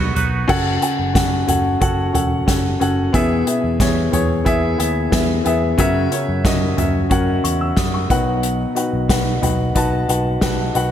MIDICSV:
0, 0, Header, 1, 5, 480
1, 0, Start_track
1, 0, Tempo, 662252
1, 357, Time_signature, 4, 2, 24, 8
1, 7910, End_track
2, 0, Start_track
2, 0, Title_t, "Grand piano"
2, 0, Program_c, 0, 0
2, 0, Control_c, 0, 64, 127
2, 0, Note_on_c, 0, 51, 44
2, 0, Note_on_c, 0, 54, 41
2, 0, Note_on_c, 0, 59, 46
2, 345, Note_on_c, 0, 61, 105
2, 350, Note_on_c, 0, 66, 86
2, 352, Note_on_c, 0, 49, 60
2, 355, Note_on_c, 0, 69, 84
2, 359, Note_on_c, 0, 78, 113
2, 367, Control_c, 0, 64, 0
2, 370, Note_off_c, 0, 51, 0
2, 373, Note_off_c, 0, 54, 0
2, 374, Note_off_c, 0, 59, 0
2, 502, Control_c, 0, 64, 127
2, 564, Note_off_c, 0, 61, 0
2, 567, Note_off_c, 0, 66, 0
2, 569, Note_off_c, 0, 69, 0
2, 571, Note_off_c, 0, 78, 0
2, 585, Note_on_c, 0, 61, 70
2, 590, Note_on_c, 0, 66, 58
2, 596, Note_on_c, 0, 69, 60
2, 599, Note_on_c, 0, 80, 69
2, 804, Note_off_c, 0, 61, 0
2, 806, Note_off_c, 0, 66, 0
2, 809, Note_off_c, 0, 69, 0
2, 811, Note_off_c, 0, 80, 0
2, 823, Note_on_c, 0, 61, 69
2, 828, Note_on_c, 0, 66, 61
2, 833, Note_on_c, 0, 69, 59
2, 837, Note_on_c, 0, 78, 77
2, 1043, Note_off_c, 0, 61, 0
2, 1045, Note_off_c, 0, 49, 0
2, 1045, Note_off_c, 0, 66, 0
2, 1048, Note_off_c, 0, 69, 0
2, 1050, Note_off_c, 0, 78, 0
2, 1064, Note_on_c, 0, 61, 75
2, 1069, Note_on_c, 0, 66, 71
2, 1074, Note_on_c, 0, 69, 66
2, 1078, Note_on_c, 0, 78, 79
2, 1283, Note_off_c, 0, 61, 0
2, 1286, Note_off_c, 0, 66, 0
2, 1288, Note_off_c, 0, 69, 0
2, 1290, Note_off_c, 0, 78, 0
2, 1306, Note_on_c, 0, 61, 81
2, 1310, Note_on_c, 0, 66, 81
2, 1312, Note_on_c, 0, 69, 80
2, 1318, Note_on_c, 0, 78, 101
2, 1524, Note_off_c, 0, 61, 0
2, 1526, Note_off_c, 0, 66, 0
2, 1527, Note_off_c, 0, 69, 0
2, 1530, Note_off_c, 0, 78, 0
2, 1543, Note_on_c, 0, 61, 70
2, 1550, Note_on_c, 0, 66, 68
2, 1554, Note_on_c, 0, 69, 68
2, 1557, Note_on_c, 0, 78, 82
2, 1763, Note_off_c, 0, 61, 0
2, 1766, Note_off_c, 0, 66, 0
2, 1768, Note_off_c, 0, 69, 0
2, 1770, Note_off_c, 0, 78, 0
2, 1784, Note_on_c, 0, 61, 67
2, 1789, Note_on_c, 0, 66, 62
2, 1793, Note_on_c, 0, 69, 57
2, 1796, Note_on_c, 0, 78, 71
2, 2003, Note_off_c, 0, 61, 0
2, 2006, Note_off_c, 0, 66, 0
2, 2008, Note_off_c, 0, 69, 0
2, 2009, Note_off_c, 0, 78, 0
2, 2027, Note_on_c, 0, 61, 86
2, 2032, Note_on_c, 0, 66, 74
2, 2036, Note_on_c, 0, 69, 69
2, 2041, Note_on_c, 0, 78, 87
2, 2245, Note_off_c, 0, 61, 0
2, 2247, Note_off_c, 0, 66, 0
2, 2249, Note_off_c, 0, 69, 0
2, 2252, Note_off_c, 0, 78, 0
2, 2266, Note_on_c, 0, 59, 95
2, 2271, Note_on_c, 0, 47, 70
2, 2272, Note_on_c, 0, 64, 92
2, 2275, Note_on_c, 0, 68, 97
2, 2281, Note_on_c, 0, 76, 110
2, 2285, Control_c, 0, 64, 0
2, 2400, Control_c, 0, 64, 127
2, 2484, Note_off_c, 0, 59, 0
2, 2487, Note_off_c, 0, 64, 0
2, 2489, Note_off_c, 0, 68, 0
2, 2491, Note_off_c, 0, 76, 0
2, 2504, Note_on_c, 0, 59, 63
2, 2508, Note_on_c, 0, 64, 59
2, 2514, Note_on_c, 0, 68, 67
2, 2518, Note_on_c, 0, 76, 65
2, 2723, Note_off_c, 0, 59, 0
2, 2725, Note_off_c, 0, 64, 0
2, 2728, Note_off_c, 0, 68, 0
2, 2730, Note_off_c, 0, 76, 0
2, 2748, Note_on_c, 0, 59, 62
2, 2753, Note_on_c, 0, 64, 58
2, 2757, Note_on_c, 0, 68, 59
2, 2761, Note_on_c, 0, 73, 76
2, 2964, Note_off_c, 0, 47, 0
2, 2965, Note_off_c, 0, 59, 0
2, 2967, Note_off_c, 0, 64, 0
2, 2970, Note_off_c, 0, 68, 0
2, 2972, Note_off_c, 0, 73, 0
2, 2983, Note_on_c, 0, 59, 72
2, 2986, Note_on_c, 0, 64, 62
2, 2992, Note_on_c, 0, 68, 67
2, 2997, Note_on_c, 0, 73, 85
2, 3202, Note_off_c, 0, 59, 0
2, 3204, Note_off_c, 0, 64, 0
2, 3207, Note_off_c, 0, 68, 0
2, 3209, Note_off_c, 0, 73, 0
2, 3222, Note_on_c, 0, 59, 86
2, 3226, Note_on_c, 0, 64, 88
2, 3231, Note_on_c, 0, 68, 91
2, 3235, Note_on_c, 0, 76, 110
2, 3442, Note_off_c, 0, 59, 0
2, 3444, Note_off_c, 0, 64, 0
2, 3447, Note_off_c, 0, 68, 0
2, 3449, Note_off_c, 0, 76, 0
2, 3463, Note_on_c, 0, 59, 79
2, 3466, Note_on_c, 0, 64, 66
2, 3471, Note_on_c, 0, 68, 65
2, 3476, Note_on_c, 0, 76, 83
2, 3682, Note_off_c, 0, 59, 0
2, 3684, Note_off_c, 0, 64, 0
2, 3687, Note_off_c, 0, 68, 0
2, 3689, Note_off_c, 0, 76, 0
2, 3701, Note_on_c, 0, 59, 68
2, 3706, Note_on_c, 0, 64, 66
2, 3711, Note_on_c, 0, 68, 60
2, 3716, Note_on_c, 0, 76, 76
2, 3921, Note_off_c, 0, 59, 0
2, 3924, Note_off_c, 0, 64, 0
2, 3927, Note_off_c, 0, 68, 0
2, 3929, Note_off_c, 0, 76, 0
2, 3945, Note_on_c, 0, 59, 84
2, 3951, Note_on_c, 0, 64, 71
2, 3955, Note_on_c, 0, 68, 74
2, 3960, Note_on_c, 0, 76, 86
2, 4164, Note_off_c, 0, 59, 0
2, 4166, Note_off_c, 0, 64, 0
2, 4169, Note_off_c, 0, 68, 0
2, 4171, Note_off_c, 0, 76, 0
2, 4187, Note_on_c, 0, 61, 104
2, 4192, Note_on_c, 0, 66, 88
2, 4194, Note_on_c, 0, 49, 68
2, 4197, Note_on_c, 0, 70, 88
2, 4202, Note_on_c, 0, 76, 116
2, 4206, Control_c, 0, 64, 0
2, 4348, Control_c, 0, 64, 127
2, 4404, Note_off_c, 0, 61, 0
2, 4407, Note_off_c, 0, 66, 0
2, 4409, Note_off_c, 0, 70, 0
2, 4412, Note_off_c, 0, 76, 0
2, 4423, Note_on_c, 0, 61, 73
2, 4428, Note_on_c, 0, 66, 59
2, 4431, Note_on_c, 0, 70, 56
2, 4438, Note_on_c, 0, 73, 80
2, 4642, Note_off_c, 0, 61, 0
2, 4645, Note_off_c, 0, 66, 0
2, 4646, Note_off_c, 0, 70, 0
2, 4650, Note_off_c, 0, 73, 0
2, 4668, Note_on_c, 0, 61, 73
2, 4674, Note_on_c, 0, 66, 68
2, 4678, Note_on_c, 0, 70, 65
2, 4681, Note_on_c, 0, 75, 77
2, 4885, Note_off_c, 0, 49, 0
2, 4885, Note_off_c, 0, 61, 0
2, 4888, Note_off_c, 0, 66, 0
2, 4890, Note_off_c, 0, 70, 0
2, 4891, Note_off_c, 0, 75, 0
2, 4906, Note_on_c, 0, 61, 74
2, 4912, Note_on_c, 0, 66, 69
2, 4915, Note_on_c, 0, 70, 67
2, 4919, Note_on_c, 0, 76, 75
2, 5124, Note_off_c, 0, 61, 0
2, 5127, Note_off_c, 0, 66, 0
2, 5128, Note_off_c, 0, 70, 0
2, 5130, Note_off_c, 0, 76, 0
2, 5144, Note_on_c, 0, 61, 88
2, 5149, Note_on_c, 0, 66, 77
2, 5154, Note_on_c, 0, 70, 78
2, 5158, Note_on_c, 0, 78, 97
2, 5362, Note_off_c, 0, 61, 0
2, 5365, Note_off_c, 0, 66, 0
2, 5368, Note_off_c, 0, 70, 0
2, 5370, Note_off_c, 0, 78, 0
2, 5392, Note_on_c, 0, 85, 58
2, 5507, Note_off_c, 0, 85, 0
2, 5516, Note_on_c, 0, 88, 62
2, 5630, Note_off_c, 0, 88, 0
2, 5634, Note_on_c, 0, 87, 51
2, 5748, Note_off_c, 0, 87, 0
2, 5755, Note_on_c, 0, 85, 53
2, 5868, Note_on_c, 0, 63, 82
2, 5873, Note_on_c, 0, 66, 78
2, 5874, Note_on_c, 0, 47, 63
2, 5875, Note_on_c, 0, 54, 67
2, 5876, Note_on_c, 0, 71, 75
2, 5879, Note_on_c, 0, 78, 88
2, 5885, Control_c, 0, 64, 0
2, 5983, Note_off_c, 0, 85, 0
2, 6001, Control_c, 0, 64, 127
2, 6297, Note_off_c, 0, 63, 0
2, 6300, Note_off_c, 0, 66, 0
2, 6301, Note_off_c, 0, 71, 0
2, 6303, Note_off_c, 0, 78, 0
2, 6342, Note_on_c, 0, 63, 69
2, 6346, Note_on_c, 0, 66, 67
2, 6351, Note_on_c, 0, 71, 67
2, 6356, Note_on_c, 0, 78, 66
2, 6561, Note_off_c, 0, 63, 0
2, 6563, Note_off_c, 0, 66, 0
2, 6565, Note_off_c, 0, 47, 0
2, 6565, Note_off_c, 0, 54, 0
2, 6566, Note_off_c, 0, 71, 0
2, 6568, Note_off_c, 0, 78, 0
2, 6583, Note_on_c, 0, 63, 73
2, 6588, Note_on_c, 0, 66, 63
2, 6592, Note_on_c, 0, 71, 69
2, 6595, Note_on_c, 0, 78, 79
2, 6801, Note_off_c, 0, 63, 0
2, 6804, Note_off_c, 0, 66, 0
2, 6806, Note_off_c, 0, 71, 0
2, 6808, Note_off_c, 0, 78, 0
2, 6822, Note_on_c, 0, 63, 74
2, 6828, Note_on_c, 0, 66, 62
2, 6832, Note_on_c, 0, 71, 69
2, 6837, Note_on_c, 0, 78, 80
2, 7041, Note_off_c, 0, 63, 0
2, 7044, Note_off_c, 0, 66, 0
2, 7046, Note_off_c, 0, 71, 0
2, 7048, Note_off_c, 0, 78, 0
2, 7067, Note_on_c, 0, 63, 90
2, 7071, Note_on_c, 0, 66, 82
2, 7074, Note_on_c, 0, 71, 81
2, 7080, Note_on_c, 0, 81, 94
2, 7284, Note_off_c, 0, 63, 0
2, 7285, Note_off_c, 0, 66, 0
2, 7287, Note_off_c, 0, 71, 0
2, 7290, Note_off_c, 0, 81, 0
2, 7307, Note_on_c, 0, 63, 74
2, 7311, Note_on_c, 0, 66, 65
2, 7316, Note_on_c, 0, 71, 69
2, 7319, Note_on_c, 0, 78, 80
2, 7523, Note_off_c, 0, 63, 0
2, 7526, Note_off_c, 0, 66, 0
2, 7528, Note_off_c, 0, 71, 0
2, 7529, Note_off_c, 0, 78, 0
2, 7545, Note_on_c, 0, 63, 70
2, 7552, Note_on_c, 0, 66, 62
2, 7555, Note_on_c, 0, 71, 65
2, 7562, Note_on_c, 0, 78, 81
2, 7762, Note_off_c, 0, 63, 0
2, 7766, Note_off_c, 0, 66, 0
2, 7767, Note_off_c, 0, 71, 0
2, 7771, Note_off_c, 0, 78, 0
2, 7786, Note_on_c, 0, 63, 82
2, 7792, Note_on_c, 0, 66, 75
2, 7797, Note_on_c, 0, 71, 78
2, 7800, Note_on_c, 0, 78, 88
2, 7910, Note_off_c, 0, 63, 0
2, 7910, Note_off_c, 0, 66, 0
2, 7910, Note_off_c, 0, 71, 0
2, 7910, Note_off_c, 0, 78, 0
2, 7910, End_track
3, 0, Start_track
3, 0, Title_t, "Clean electric guitar"
3, 0, Program_c, 1, 27
3, 0, Note_on_c, 1, 54, 54
3, 0, Note_on_c, 1, 59, 62
3, 0, Note_on_c, 1, 63, 60
3, 0, Note_on_c, 1, 66, 68
3, 104, Note_off_c, 1, 66, 0
3, 112, Note_off_c, 1, 63, 0
3, 112, Note_on_c, 1, 66, 50
3, 114, Note_off_c, 1, 54, 0
3, 117, Note_off_c, 1, 59, 0
3, 121, Note_on_c, 1, 63, 43
3, 126, Note_on_c, 1, 59, 38
3, 354, Note_off_c, 1, 66, 0
3, 359, Note_off_c, 1, 63, 0
3, 361, Note_off_c, 1, 59, 0
3, 7910, End_track
4, 0, Start_track
4, 0, Title_t, "Picked electric bass"
4, 0, Program_c, 2, 34
4, 0, Note_on_c, 2, 35, 86
4, 74, Note_off_c, 2, 35, 0
4, 120, Note_on_c, 2, 35, 95
4, 315, Note_off_c, 2, 35, 0
4, 357, Note_on_c, 2, 30, 82
4, 554, Note_off_c, 2, 30, 0
4, 720, Note_on_c, 2, 30, 77
4, 817, Note_off_c, 2, 30, 0
4, 835, Note_on_c, 2, 30, 85
4, 1032, Note_off_c, 2, 30, 0
4, 1078, Note_on_c, 2, 30, 75
4, 1274, Note_off_c, 2, 30, 0
4, 1317, Note_on_c, 2, 30, 84
4, 1513, Note_off_c, 2, 30, 0
4, 1557, Note_on_c, 2, 28, 81
4, 1754, Note_off_c, 2, 28, 0
4, 1797, Note_on_c, 2, 30, 71
4, 1994, Note_off_c, 2, 30, 0
4, 2037, Note_on_c, 2, 30, 93
4, 2233, Note_off_c, 2, 30, 0
4, 2277, Note_on_c, 2, 40, 88
4, 2473, Note_off_c, 2, 40, 0
4, 2637, Note_on_c, 2, 40, 86
4, 2735, Note_off_c, 2, 40, 0
4, 2754, Note_on_c, 2, 40, 81
4, 2951, Note_off_c, 2, 40, 0
4, 2996, Note_on_c, 2, 40, 88
4, 3193, Note_off_c, 2, 40, 0
4, 3236, Note_on_c, 2, 40, 71
4, 3432, Note_off_c, 2, 40, 0
4, 3475, Note_on_c, 2, 39, 86
4, 3672, Note_off_c, 2, 39, 0
4, 3715, Note_on_c, 2, 40, 72
4, 3912, Note_off_c, 2, 40, 0
4, 3957, Note_on_c, 2, 40, 89
4, 4153, Note_off_c, 2, 40, 0
4, 4195, Note_on_c, 2, 42, 90
4, 4392, Note_off_c, 2, 42, 0
4, 4556, Note_on_c, 2, 42, 79
4, 4654, Note_off_c, 2, 42, 0
4, 4674, Note_on_c, 2, 42, 92
4, 4871, Note_off_c, 2, 42, 0
4, 4915, Note_on_c, 2, 42, 94
4, 5112, Note_off_c, 2, 42, 0
4, 5153, Note_on_c, 2, 42, 86
4, 5351, Note_off_c, 2, 42, 0
4, 5393, Note_on_c, 2, 40, 89
4, 5590, Note_off_c, 2, 40, 0
4, 5634, Note_on_c, 2, 42, 76
4, 5831, Note_off_c, 2, 42, 0
4, 5872, Note_on_c, 2, 35, 84
4, 6267, Note_off_c, 2, 35, 0
4, 6475, Note_on_c, 2, 35, 71
4, 6573, Note_off_c, 2, 35, 0
4, 6592, Note_on_c, 2, 35, 90
4, 6790, Note_off_c, 2, 35, 0
4, 6833, Note_on_c, 2, 35, 83
4, 7030, Note_off_c, 2, 35, 0
4, 7073, Note_on_c, 2, 35, 85
4, 7270, Note_off_c, 2, 35, 0
4, 7314, Note_on_c, 2, 35, 83
4, 7511, Note_off_c, 2, 35, 0
4, 7553, Note_on_c, 2, 35, 75
4, 7750, Note_off_c, 2, 35, 0
4, 7794, Note_on_c, 2, 35, 82
4, 7910, Note_off_c, 2, 35, 0
4, 7910, End_track
5, 0, Start_track
5, 0, Title_t, "Drums"
5, 118, Note_on_c, 9, 42, 54
5, 118, Note_on_c, 9, 43, 50
5, 190, Note_off_c, 9, 43, 0
5, 191, Note_off_c, 9, 42, 0
5, 356, Note_on_c, 9, 36, 92
5, 356, Note_on_c, 9, 49, 77
5, 428, Note_off_c, 9, 49, 0
5, 429, Note_off_c, 9, 36, 0
5, 595, Note_on_c, 9, 42, 55
5, 668, Note_off_c, 9, 42, 0
5, 835, Note_on_c, 9, 36, 103
5, 837, Note_on_c, 9, 38, 104
5, 837, Note_on_c, 9, 42, 71
5, 908, Note_off_c, 9, 36, 0
5, 909, Note_off_c, 9, 38, 0
5, 909, Note_off_c, 9, 42, 0
5, 1075, Note_on_c, 9, 43, 55
5, 1076, Note_on_c, 9, 42, 73
5, 1147, Note_off_c, 9, 43, 0
5, 1149, Note_off_c, 9, 42, 0
5, 1315, Note_on_c, 9, 42, 65
5, 1316, Note_on_c, 9, 36, 91
5, 1388, Note_off_c, 9, 42, 0
5, 1389, Note_off_c, 9, 36, 0
5, 1555, Note_on_c, 9, 43, 56
5, 1559, Note_on_c, 9, 42, 63
5, 1628, Note_off_c, 9, 43, 0
5, 1631, Note_off_c, 9, 42, 0
5, 1795, Note_on_c, 9, 38, 93
5, 1796, Note_on_c, 9, 36, 86
5, 1799, Note_on_c, 9, 42, 77
5, 1868, Note_off_c, 9, 38, 0
5, 1869, Note_off_c, 9, 36, 0
5, 1872, Note_off_c, 9, 42, 0
5, 2038, Note_on_c, 9, 42, 46
5, 2111, Note_off_c, 9, 42, 0
5, 2276, Note_on_c, 9, 36, 91
5, 2276, Note_on_c, 9, 42, 72
5, 2348, Note_off_c, 9, 36, 0
5, 2348, Note_off_c, 9, 42, 0
5, 2515, Note_on_c, 9, 42, 54
5, 2588, Note_off_c, 9, 42, 0
5, 2754, Note_on_c, 9, 36, 96
5, 2756, Note_on_c, 9, 38, 102
5, 2756, Note_on_c, 9, 42, 85
5, 2827, Note_off_c, 9, 36, 0
5, 2828, Note_off_c, 9, 38, 0
5, 2828, Note_off_c, 9, 42, 0
5, 2995, Note_on_c, 9, 43, 61
5, 2996, Note_on_c, 9, 42, 67
5, 3067, Note_off_c, 9, 43, 0
5, 3069, Note_off_c, 9, 42, 0
5, 3233, Note_on_c, 9, 42, 64
5, 3235, Note_on_c, 9, 36, 93
5, 3306, Note_off_c, 9, 42, 0
5, 3307, Note_off_c, 9, 36, 0
5, 3477, Note_on_c, 9, 42, 64
5, 3550, Note_off_c, 9, 42, 0
5, 3712, Note_on_c, 9, 38, 86
5, 3714, Note_on_c, 9, 36, 95
5, 3716, Note_on_c, 9, 42, 83
5, 3785, Note_off_c, 9, 38, 0
5, 3787, Note_off_c, 9, 36, 0
5, 3788, Note_off_c, 9, 42, 0
5, 3954, Note_on_c, 9, 42, 52
5, 4026, Note_off_c, 9, 42, 0
5, 4192, Note_on_c, 9, 42, 76
5, 4194, Note_on_c, 9, 36, 87
5, 4265, Note_off_c, 9, 42, 0
5, 4266, Note_off_c, 9, 36, 0
5, 4434, Note_on_c, 9, 42, 58
5, 4507, Note_off_c, 9, 42, 0
5, 4673, Note_on_c, 9, 36, 105
5, 4676, Note_on_c, 9, 38, 107
5, 4676, Note_on_c, 9, 42, 74
5, 4745, Note_off_c, 9, 36, 0
5, 4748, Note_off_c, 9, 38, 0
5, 4748, Note_off_c, 9, 42, 0
5, 4915, Note_on_c, 9, 43, 63
5, 4916, Note_on_c, 9, 42, 67
5, 4987, Note_off_c, 9, 43, 0
5, 4988, Note_off_c, 9, 42, 0
5, 5152, Note_on_c, 9, 42, 77
5, 5153, Note_on_c, 9, 36, 92
5, 5225, Note_off_c, 9, 42, 0
5, 5226, Note_off_c, 9, 36, 0
5, 5397, Note_on_c, 9, 42, 65
5, 5469, Note_off_c, 9, 42, 0
5, 5628, Note_on_c, 9, 38, 93
5, 5632, Note_on_c, 9, 36, 94
5, 5632, Note_on_c, 9, 42, 78
5, 5701, Note_off_c, 9, 38, 0
5, 5704, Note_off_c, 9, 36, 0
5, 5705, Note_off_c, 9, 42, 0
5, 5872, Note_on_c, 9, 36, 91
5, 5873, Note_on_c, 9, 42, 54
5, 5945, Note_off_c, 9, 36, 0
5, 5945, Note_off_c, 9, 42, 0
5, 6111, Note_on_c, 9, 42, 77
5, 6184, Note_off_c, 9, 42, 0
5, 6352, Note_on_c, 9, 42, 55
5, 6424, Note_off_c, 9, 42, 0
5, 6592, Note_on_c, 9, 36, 91
5, 6594, Note_on_c, 9, 38, 103
5, 6594, Note_on_c, 9, 42, 84
5, 6664, Note_off_c, 9, 36, 0
5, 6667, Note_off_c, 9, 38, 0
5, 6667, Note_off_c, 9, 42, 0
5, 6833, Note_on_c, 9, 43, 60
5, 6835, Note_on_c, 9, 42, 63
5, 6906, Note_off_c, 9, 43, 0
5, 6907, Note_off_c, 9, 42, 0
5, 7071, Note_on_c, 9, 42, 77
5, 7073, Note_on_c, 9, 36, 88
5, 7144, Note_off_c, 9, 42, 0
5, 7145, Note_off_c, 9, 36, 0
5, 7315, Note_on_c, 9, 42, 65
5, 7387, Note_off_c, 9, 42, 0
5, 7548, Note_on_c, 9, 38, 89
5, 7552, Note_on_c, 9, 36, 85
5, 7552, Note_on_c, 9, 42, 85
5, 7621, Note_off_c, 9, 38, 0
5, 7624, Note_off_c, 9, 36, 0
5, 7624, Note_off_c, 9, 42, 0
5, 7791, Note_on_c, 9, 42, 53
5, 7864, Note_off_c, 9, 42, 0
5, 7910, End_track
0, 0, End_of_file